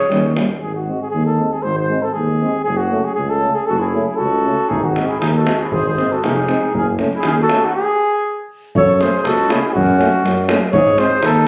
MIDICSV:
0, 0, Header, 1, 7, 480
1, 0, Start_track
1, 0, Tempo, 510204
1, 597, Time_signature, 2, 2, 24, 8
1, 5877, Tempo, 497925
1, 10918, End_track
2, 0, Start_track
2, 0, Title_t, "Flugelhorn"
2, 0, Program_c, 0, 56
2, 0, Note_on_c, 0, 73, 103
2, 308, Note_off_c, 0, 73, 0
2, 571, Note_on_c, 0, 68, 73
2, 700, Note_off_c, 0, 68, 0
2, 706, Note_on_c, 0, 66, 60
2, 941, Note_off_c, 0, 66, 0
2, 961, Note_on_c, 0, 68, 60
2, 1034, Note_off_c, 0, 68, 0
2, 1040, Note_on_c, 0, 68, 75
2, 1178, Note_off_c, 0, 68, 0
2, 1184, Note_on_c, 0, 69, 65
2, 1435, Note_on_c, 0, 68, 65
2, 1449, Note_off_c, 0, 69, 0
2, 1526, Note_on_c, 0, 72, 84
2, 1540, Note_off_c, 0, 68, 0
2, 1667, Note_off_c, 0, 72, 0
2, 1672, Note_on_c, 0, 72, 76
2, 1903, Note_on_c, 0, 69, 69
2, 1917, Note_off_c, 0, 72, 0
2, 2001, Note_on_c, 0, 68, 88
2, 2015, Note_off_c, 0, 69, 0
2, 2478, Note_off_c, 0, 68, 0
2, 2483, Note_on_c, 0, 68, 86
2, 2605, Note_on_c, 0, 66, 74
2, 2619, Note_off_c, 0, 68, 0
2, 2868, Note_on_c, 0, 68, 69
2, 2882, Note_off_c, 0, 66, 0
2, 2955, Note_off_c, 0, 68, 0
2, 2961, Note_on_c, 0, 68, 73
2, 3098, Note_on_c, 0, 69, 79
2, 3112, Note_off_c, 0, 68, 0
2, 3340, Note_on_c, 0, 68, 78
2, 3354, Note_off_c, 0, 69, 0
2, 3441, Note_on_c, 0, 69, 86
2, 3455, Note_off_c, 0, 68, 0
2, 3572, Note_on_c, 0, 68, 72
2, 3586, Note_off_c, 0, 69, 0
2, 3808, Note_off_c, 0, 68, 0
2, 3813, Note_on_c, 0, 68, 66
2, 3908, Note_on_c, 0, 69, 79
2, 3923, Note_off_c, 0, 68, 0
2, 4409, Note_on_c, 0, 68, 79
2, 4423, Note_off_c, 0, 69, 0
2, 4551, Note_on_c, 0, 66, 67
2, 4566, Note_off_c, 0, 68, 0
2, 4765, Note_on_c, 0, 68, 68
2, 4779, Note_off_c, 0, 66, 0
2, 4884, Note_off_c, 0, 68, 0
2, 4890, Note_on_c, 0, 68, 79
2, 4957, Note_off_c, 0, 68, 0
2, 5032, Note_on_c, 0, 69, 70
2, 5266, Note_on_c, 0, 68, 71
2, 5280, Note_off_c, 0, 69, 0
2, 5391, Note_on_c, 0, 72, 82
2, 5405, Note_off_c, 0, 68, 0
2, 5508, Note_off_c, 0, 72, 0
2, 5513, Note_on_c, 0, 72, 72
2, 5757, Note_on_c, 0, 69, 69
2, 5771, Note_off_c, 0, 72, 0
2, 5870, Note_on_c, 0, 68, 76
2, 5884, Note_off_c, 0, 69, 0
2, 6358, Note_off_c, 0, 68, 0
2, 6366, Note_on_c, 0, 68, 80
2, 6489, Note_off_c, 0, 68, 0
2, 6776, Note_on_c, 0, 68, 82
2, 6858, Note_off_c, 0, 68, 0
2, 6890, Note_on_c, 0, 68, 95
2, 6940, Note_off_c, 0, 68, 0
2, 7006, Note_on_c, 0, 69, 102
2, 7226, Note_on_c, 0, 66, 83
2, 7240, Note_off_c, 0, 69, 0
2, 7318, Note_off_c, 0, 66, 0
2, 7324, Note_on_c, 0, 68, 106
2, 8010, Note_off_c, 0, 68, 0
2, 8312, Note_on_c, 0, 73, 116
2, 8548, Note_on_c, 0, 72, 96
2, 8563, Note_off_c, 0, 73, 0
2, 8766, Note_on_c, 0, 69, 89
2, 8780, Note_off_c, 0, 72, 0
2, 9018, Note_on_c, 0, 68, 84
2, 9033, Note_off_c, 0, 69, 0
2, 9183, Note_off_c, 0, 68, 0
2, 9189, Note_on_c, 0, 68, 76
2, 9236, Note_on_c, 0, 66, 104
2, 9251, Note_off_c, 0, 68, 0
2, 9957, Note_off_c, 0, 66, 0
2, 10199, Note_on_c, 0, 73, 106
2, 10451, Note_on_c, 0, 72, 105
2, 10465, Note_off_c, 0, 73, 0
2, 10705, Note_on_c, 0, 69, 93
2, 10720, Note_off_c, 0, 72, 0
2, 10918, Note_off_c, 0, 69, 0
2, 10918, End_track
3, 0, Start_track
3, 0, Title_t, "Clarinet"
3, 0, Program_c, 1, 71
3, 0, Note_on_c, 1, 68, 83
3, 324, Note_off_c, 1, 68, 0
3, 3468, Note_on_c, 1, 66, 70
3, 3568, Note_on_c, 1, 64, 63
3, 3582, Note_off_c, 1, 66, 0
3, 3818, Note_off_c, 1, 64, 0
3, 3824, Note_on_c, 1, 64, 62
3, 3930, Note_on_c, 1, 66, 78
3, 3944, Note_off_c, 1, 64, 0
3, 4413, Note_on_c, 1, 63, 68
3, 4427, Note_off_c, 1, 66, 0
3, 4553, Note_off_c, 1, 63, 0
3, 4553, Note_on_c, 1, 63, 56
3, 4774, Note_on_c, 1, 64, 57
3, 4789, Note_off_c, 1, 63, 0
3, 4895, Note_off_c, 1, 64, 0
3, 4901, Note_on_c, 1, 63, 60
3, 4965, Note_off_c, 1, 63, 0
3, 5031, Note_on_c, 1, 66, 60
3, 5293, Note_on_c, 1, 64, 56
3, 5307, Note_off_c, 1, 66, 0
3, 5381, Note_on_c, 1, 68, 79
3, 5395, Note_off_c, 1, 64, 0
3, 5516, Note_off_c, 1, 68, 0
3, 5521, Note_on_c, 1, 68, 68
3, 5760, Note_on_c, 1, 66, 59
3, 5774, Note_off_c, 1, 68, 0
3, 5879, Note_on_c, 1, 63, 75
3, 5893, Note_off_c, 1, 66, 0
3, 6347, Note_off_c, 1, 63, 0
3, 6353, Note_on_c, 1, 61, 65
3, 6482, Note_off_c, 1, 61, 0
3, 6752, Note_on_c, 1, 64, 68
3, 6846, Note_off_c, 1, 64, 0
3, 6860, Note_on_c, 1, 61, 82
3, 6917, Note_off_c, 1, 61, 0
3, 7003, Note_on_c, 1, 66, 83
3, 7231, Note_on_c, 1, 63, 65
3, 7246, Note_off_c, 1, 66, 0
3, 7334, Note_off_c, 1, 63, 0
3, 8316, Note_on_c, 1, 69, 87
3, 8536, Note_on_c, 1, 68, 83
3, 8550, Note_off_c, 1, 69, 0
3, 8787, Note_on_c, 1, 66, 91
3, 8801, Note_off_c, 1, 68, 0
3, 9011, Note_on_c, 1, 64, 78
3, 9025, Note_off_c, 1, 66, 0
3, 9191, Note_off_c, 1, 64, 0
3, 9203, Note_on_c, 1, 64, 51
3, 9284, Note_on_c, 1, 61, 73
3, 9298, Note_off_c, 1, 64, 0
3, 9981, Note_off_c, 1, 61, 0
3, 10208, Note_on_c, 1, 68, 101
3, 10434, Note_off_c, 1, 68, 0
3, 10434, Note_on_c, 1, 68, 84
3, 10662, Note_on_c, 1, 63, 89
3, 10676, Note_off_c, 1, 68, 0
3, 10918, Note_off_c, 1, 63, 0
3, 10918, End_track
4, 0, Start_track
4, 0, Title_t, "French horn"
4, 0, Program_c, 2, 60
4, 115, Note_on_c, 2, 61, 66
4, 212, Note_off_c, 2, 61, 0
4, 344, Note_on_c, 2, 61, 54
4, 443, Note_off_c, 2, 61, 0
4, 822, Note_on_c, 2, 60, 43
4, 921, Note_off_c, 2, 60, 0
4, 1316, Note_on_c, 2, 60, 50
4, 1413, Note_off_c, 2, 60, 0
4, 1787, Note_on_c, 2, 60, 58
4, 1886, Note_off_c, 2, 60, 0
4, 2273, Note_on_c, 2, 60, 58
4, 2371, Note_off_c, 2, 60, 0
4, 2728, Note_on_c, 2, 61, 55
4, 2832, Note_off_c, 2, 61, 0
4, 3204, Note_on_c, 2, 61, 50
4, 3309, Note_off_c, 2, 61, 0
4, 3704, Note_on_c, 2, 61, 53
4, 3804, Note_off_c, 2, 61, 0
4, 4180, Note_on_c, 2, 61, 49
4, 4281, Note_off_c, 2, 61, 0
4, 4667, Note_on_c, 2, 60, 45
4, 4766, Note_off_c, 2, 60, 0
4, 5127, Note_on_c, 2, 60, 55
4, 5230, Note_off_c, 2, 60, 0
4, 5611, Note_on_c, 2, 60, 62
4, 5711, Note_off_c, 2, 60, 0
4, 6098, Note_on_c, 2, 60, 63
4, 6199, Note_off_c, 2, 60, 0
4, 6594, Note_on_c, 2, 61, 63
4, 6692, Note_off_c, 2, 61, 0
4, 7062, Note_on_c, 2, 61, 66
4, 7163, Note_off_c, 2, 61, 0
4, 8521, Note_on_c, 2, 61, 62
4, 8619, Note_off_c, 2, 61, 0
4, 9000, Note_on_c, 2, 61, 65
4, 9097, Note_off_c, 2, 61, 0
4, 9467, Note_on_c, 2, 61, 75
4, 9566, Note_off_c, 2, 61, 0
4, 9970, Note_on_c, 2, 61, 76
4, 10063, Note_off_c, 2, 61, 0
4, 10438, Note_on_c, 2, 60, 77
4, 10533, Note_off_c, 2, 60, 0
4, 10918, End_track
5, 0, Start_track
5, 0, Title_t, "Euphonium"
5, 0, Program_c, 3, 58
5, 79, Note_on_c, 3, 55, 66
5, 183, Note_off_c, 3, 55, 0
5, 338, Note_on_c, 3, 55, 62
5, 438, Note_off_c, 3, 55, 0
5, 824, Note_on_c, 3, 56, 47
5, 923, Note_off_c, 3, 56, 0
5, 1300, Note_on_c, 3, 56, 48
5, 1400, Note_off_c, 3, 56, 0
5, 1773, Note_on_c, 3, 56, 59
5, 1875, Note_off_c, 3, 56, 0
5, 2263, Note_on_c, 3, 56, 54
5, 2364, Note_off_c, 3, 56, 0
5, 2741, Note_on_c, 3, 57, 63
5, 2842, Note_off_c, 3, 57, 0
5, 3226, Note_on_c, 3, 57, 49
5, 3326, Note_off_c, 3, 57, 0
5, 3706, Note_on_c, 3, 57, 54
5, 3806, Note_off_c, 3, 57, 0
5, 4182, Note_on_c, 3, 57, 49
5, 4282, Note_off_c, 3, 57, 0
5, 4665, Note_on_c, 3, 56, 53
5, 4764, Note_off_c, 3, 56, 0
5, 5155, Note_on_c, 3, 56, 52
5, 5251, Note_off_c, 3, 56, 0
5, 5623, Note_on_c, 3, 56, 56
5, 5721, Note_off_c, 3, 56, 0
5, 6104, Note_on_c, 3, 56, 51
5, 6204, Note_off_c, 3, 56, 0
5, 6594, Note_on_c, 3, 57, 63
5, 6693, Note_off_c, 3, 57, 0
5, 7087, Note_on_c, 3, 57, 55
5, 7184, Note_off_c, 3, 57, 0
5, 8544, Note_on_c, 3, 57, 68
5, 8637, Note_off_c, 3, 57, 0
5, 9012, Note_on_c, 3, 57, 64
5, 9107, Note_off_c, 3, 57, 0
5, 9496, Note_on_c, 3, 57, 74
5, 9589, Note_off_c, 3, 57, 0
5, 9964, Note_on_c, 3, 57, 70
5, 10059, Note_off_c, 3, 57, 0
5, 10434, Note_on_c, 3, 56, 72
5, 10530, Note_off_c, 3, 56, 0
5, 10918, End_track
6, 0, Start_track
6, 0, Title_t, "Tuba"
6, 0, Program_c, 4, 58
6, 105, Note_on_c, 4, 39, 87
6, 373, Note_off_c, 4, 39, 0
6, 587, Note_on_c, 4, 32, 68
6, 855, Note_off_c, 4, 32, 0
6, 1072, Note_on_c, 4, 39, 72
6, 1339, Note_off_c, 4, 39, 0
6, 1547, Note_on_c, 4, 32, 80
6, 1815, Note_off_c, 4, 32, 0
6, 2037, Note_on_c, 4, 39, 68
6, 2304, Note_off_c, 4, 39, 0
6, 2513, Note_on_c, 4, 30, 79
6, 2781, Note_off_c, 4, 30, 0
6, 2992, Note_on_c, 4, 37, 76
6, 3260, Note_off_c, 4, 37, 0
6, 3475, Note_on_c, 4, 30, 78
6, 3742, Note_off_c, 4, 30, 0
6, 3954, Note_on_c, 4, 37, 72
6, 4220, Note_off_c, 4, 37, 0
6, 4430, Note_on_c, 4, 32, 75
6, 4697, Note_off_c, 4, 32, 0
6, 4904, Note_on_c, 4, 39, 81
6, 5172, Note_off_c, 4, 39, 0
6, 5391, Note_on_c, 4, 32, 86
6, 5655, Note_off_c, 4, 32, 0
6, 5867, Note_on_c, 4, 29, 78
6, 6136, Note_off_c, 4, 29, 0
6, 6344, Note_on_c, 4, 30, 91
6, 6615, Note_off_c, 4, 30, 0
6, 6833, Note_on_c, 4, 39, 74
6, 7102, Note_off_c, 4, 39, 0
6, 8298, Note_on_c, 4, 42, 108
6, 8560, Note_off_c, 4, 42, 0
6, 8772, Note_on_c, 4, 37, 76
6, 9034, Note_off_c, 4, 37, 0
6, 9259, Note_on_c, 4, 42, 99
6, 9518, Note_off_c, 4, 42, 0
6, 9725, Note_on_c, 4, 42, 92
6, 9987, Note_off_c, 4, 42, 0
6, 10205, Note_on_c, 4, 44, 103
6, 10466, Note_off_c, 4, 44, 0
6, 10671, Note_on_c, 4, 39, 100
6, 10918, Note_off_c, 4, 39, 0
6, 10918, End_track
7, 0, Start_track
7, 0, Title_t, "Davul"
7, 110, Note_on_c, 9, 37, 64
7, 204, Note_off_c, 9, 37, 0
7, 344, Note_on_c, 9, 37, 73
7, 438, Note_off_c, 9, 37, 0
7, 4430, Note_on_c, 9, 43, 80
7, 4524, Note_off_c, 9, 43, 0
7, 4667, Note_on_c, 9, 37, 57
7, 4761, Note_off_c, 9, 37, 0
7, 4805, Note_on_c, 9, 37, 24
7, 4899, Note_off_c, 9, 37, 0
7, 4910, Note_on_c, 9, 37, 64
7, 5004, Note_off_c, 9, 37, 0
7, 5143, Note_on_c, 9, 37, 78
7, 5237, Note_off_c, 9, 37, 0
7, 5379, Note_on_c, 9, 43, 83
7, 5473, Note_off_c, 9, 43, 0
7, 5630, Note_on_c, 9, 37, 48
7, 5724, Note_off_c, 9, 37, 0
7, 5763, Note_on_c, 9, 37, 22
7, 5857, Note_off_c, 9, 37, 0
7, 5868, Note_on_c, 9, 37, 63
7, 5964, Note_off_c, 9, 37, 0
7, 6107, Note_on_c, 9, 37, 60
7, 6203, Note_off_c, 9, 37, 0
7, 6358, Note_on_c, 9, 43, 68
7, 6454, Note_off_c, 9, 43, 0
7, 6590, Note_on_c, 9, 37, 51
7, 6687, Note_off_c, 9, 37, 0
7, 6726, Note_on_c, 9, 37, 21
7, 6823, Note_off_c, 9, 37, 0
7, 6825, Note_on_c, 9, 37, 63
7, 6922, Note_off_c, 9, 37, 0
7, 7080, Note_on_c, 9, 37, 73
7, 7176, Note_off_c, 9, 37, 0
7, 8291, Note_on_c, 9, 43, 93
7, 8388, Note_off_c, 9, 43, 0
7, 8537, Note_on_c, 9, 37, 66
7, 8634, Note_off_c, 9, 37, 0
7, 8774, Note_on_c, 9, 37, 66
7, 8870, Note_off_c, 9, 37, 0
7, 9016, Note_on_c, 9, 37, 76
7, 9112, Note_off_c, 9, 37, 0
7, 9260, Note_on_c, 9, 43, 70
7, 9356, Note_off_c, 9, 43, 0
7, 9502, Note_on_c, 9, 37, 59
7, 9598, Note_off_c, 9, 37, 0
7, 9742, Note_on_c, 9, 37, 59
7, 9838, Note_off_c, 9, 37, 0
7, 9966, Note_on_c, 9, 37, 83
7, 10062, Note_off_c, 9, 37, 0
7, 10202, Note_on_c, 9, 43, 93
7, 10298, Note_off_c, 9, 43, 0
7, 10441, Note_on_c, 9, 37, 66
7, 10537, Note_off_c, 9, 37, 0
7, 10677, Note_on_c, 9, 37, 69
7, 10773, Note_off_c, 9, 37, 0
7, 10918, End_track
0, 0, End_of_file